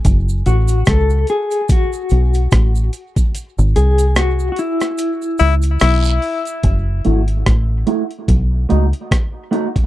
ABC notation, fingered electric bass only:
X:1
M:4/4
L:1/16
Q:"Swing 16ths" 1/4=73
K:F#dor
V:1 name="Fingered electric bass" clef=bass
F,,,2 A,,,2 C,,2 z4 B,,,2 A,,,2 z2 | z G,,, ^B,,,4 z4 C,,2 =B,,,2 z2 | F,,,2 G,,,2 A,,,2 z2 B,,,2 C,, z4 z |]